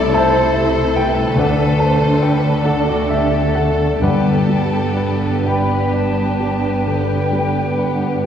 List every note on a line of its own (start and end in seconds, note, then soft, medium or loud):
0.00 1.33 C2 medium
0.00 1.34 C2 medium
0.00 1.34 C3 medium
0.00 1.40 A3 soft
0.00 3.98 A3 soft
0.00 1.37 E4 soft
0.00 0.37 A4 soft
0.00 1.37 A4 medium
0.00 3.99 A4 medium
0.00 0.12 D5 medium
0.00 0.15 E5 medium
0.00 0.14 A5 medium
0.00 1.40 B5 medium
0.00 1.40 C6 medium
0.12 0.79 E4 soft
0.12 0.95 C5 medium
0.12 0.93 C5 medium
0.12 0.52 E5 soft
0.12 0.92 A5 medium
0.54 1.21 E5 soft
0.95 1.37 A4 soft
0.95 1.38 B4 soft
0.95 1.35 G5 medium
1.35 3.97 D2 medium
1.35 4.02 D2 soft
1.35 4.02 D3 soft
1.35 3.98 D4 soft
1.35 1.79 A4 medium
1.35 1.78 A4 soft
1.35 2.35 B4 medium
1.35 1.78 D5 soft
1.35 1.77 F#5 medium
1.79 2.48 A3 soft
1.79 2.22 C5 medium
1.79 2.19 A5 medium
2.21 2.64 A4 soft
2.21 2.65 B4 medium
2.21 2.63 G5 medium
2.63 3.37 D4 soft
2.63 2.87 A4 soft
2.63 2.86 A4 soft
2.63 2.86 D5 soft
2.63 2.85 F#5 medium
2.68 3.99 A4 medium
2.86 3.09 F#4 soft
2.86 3.08 D5 medium
3.08 3.55 G4 soft
3.08 3.83 D5 soft
3.08 3.52 E5 medium
3.54 4.01 A4 soft
3.54 4.02 A4 soft
3.54 3.99 F#5 medium
4.01 8.26 G1 soft
4.01 5.42 G2 medium
4.01 6.82 G2 soft
4.01 8.26 G2 soft
4.01 8.26 B3 soft
4.01 8.26 D4 soft
4.01 8.26 G4 soft
4.01 5.43 A4 medium
4.01 8.26 B4 soft
4.01 4.95 B4 soft
4.01 5.43 D5 soft
4.01 5.43 F#5 medium
4.49 5.26 G3 soft
4.97 5.46 B4 soft
5.44 6.21 G4 soft
5.44 8.26 B4 soft
5.44 7.78 B4 soft
5.44 5.92 D5 soft
5.44 8.26 G5 soft
5.44 5.92 B5 soft
5.93 6.68 D5 soft
5.93 6.85 A5 medium
6.40 7.13 G4 soft
6.87 7.60 D3 soft
6.87 7.78 G5 medium
7.32 8.05 G3 soft
7.77 8.26 B4 soft
7.77 8.23 F#5 soft